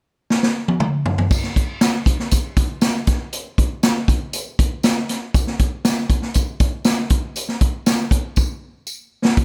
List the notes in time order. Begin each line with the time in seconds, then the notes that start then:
0.30 snare
0.43 snare
0.68 high tom
0.80 mid tom
1.06 floor tom
1.18 floor tom
1.31 kick, crash, tambourine
1.44 snare
1.56 kick, closed hi-hat
1.81 snare, closed hi-hat, tambourine
2.06 kick, closed hi-hat
2.19 snare
2.31 kick, closed hi-hat, tambourine
2.57 kick, closed hi-hat
2.81 snare, closed hi-hat, tambourine
3.07 kick, snare, closed hi-hat
3.33 closed hi-hat, tambourine
3.58 kick, closed hi-hat
3.83 snare, closed hi-hat, tambourine
4.08 kick, closed hi-hat
4.33 closed hi-hat, tambourine
4.59 kick, closed hi-hat
4.83 snare, closed hi-hat, tambourine
5.09 snare, closed hi-hat
5.34 kick, closed hi-hat, tambourine
5.47 snare
5.59 kick, closed hi-hat
5.85 snare, closed hi-hat, tambourine
6.10 kick, closed hi-hat
6.22 snare
6.34 kick, closed hi-hat, tambourine
6.60 kick, closed hi-hat
6.85 snare, closed hi-hat, tambourine
7.10 kick, closed hi-hat
7.36 closed hi-hat, tambourine
7.49 snare
7.61 kick, closed hi-hat
7.86 snare, closed hi-hat, tambourine
8.11 kick, closed hi-hat
8.36 kick, tambourine
8.87 tambourine
9.25 snare
9.37 kick, closed hi-hat